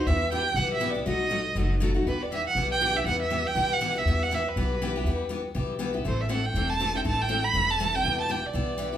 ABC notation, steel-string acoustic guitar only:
X:1
M:4/4
L:1/8
Q:"Swing" 1/4=240
K:Em
V:1 name="Steel-string acoustic guitar"
[E,B,EG] z [E,B,EG] z [E,B,EG] z [E,B,EG] [B,EG] | [B,,F,A,^DF] z [B,,F,A,DF] z [B,,F,A,DF] z [B,,F,A,DF] [A,DF] | [E,B,EG] z [E,B,EG] z [E,B,EG] z [E,B,EG] [B,EG] | [E,B,EG] z [E,B,EG] z [E,B,EG] z [E,B,EG] [B,EG] |
[E,B,EG] z [E,B,EG] z [E,B,EG] z [E,B,EG] [B,EG] | [E,B,EG] z [E,B,EG] z [E,B,EG] z [E,B,EG] [B,EG] | [E,A,CEA] z [E,A,CEA] z [E,A,CEA] z [E,A,CEA] [CEA] | [E,A,CEA] z [E,A,CEA] z [E,A,CEA] z [E,A,CEA] [CEA] |
[E,B,EG] z [E,B,EG] z [E,B,EG] z [E,B,EG] [B,EG] |]